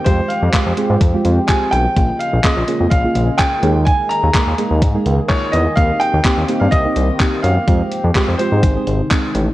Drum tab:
HH |xxxxxxxx|xxxxxxxx|xxxxxxxx|xxxxxxxx|
CP |--x---x-|--x---x-|--x---x-|--x---x-|
BD |o-o-o-o-|o-o-o-o-|o-o-o-o-|o-o-o-o-|

HH |xxxxxxxx|
CP |--x---x-|
BD |o-o-o-o-|